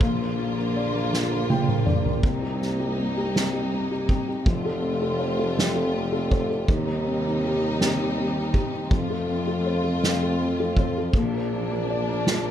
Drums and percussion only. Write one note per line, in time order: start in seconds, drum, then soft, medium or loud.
0.00 kick loud
0.00 ride medium
0.37 ride soft
0.75 ride soft
1.13 snare medium
1.50 high tom medium
1.68 mid tom medium
1.87 mid tom loud
2.06 floor tom medium
2.23 kick loud
2.23 ride medium
2.60 snare soft
2.60 ride soft
2.97 ride soft
3.35 snare loud
3.35 ride medium
3.72 ride soft
4.09 kick medium
4.46 kick loud
4.46 ride medium
4.83 ride soft
5.20 ride soft
5.57 snare loud
5.57 ride medium
5.94 ride soft
6.31 kick medium
6.68 kick loud
6.68 ride medium
7.05 ride soft
7.42 ride soft
7.80 snare loud
7.80 ride medium
8.16 ride soft
8.53 kick medium
8.53 ride soft
8.91 kick loud
8.91 ride medium
9.28 ride soft
9.64 ride soft
10.02 snare loud
10.02 ride medium
10.39 ride soft
10.77 kick medium
11.13 kick loud
11.13 ride medium
11.50 ride soft
11.88 ride soft
12.25 snare loud
12.25 ride medium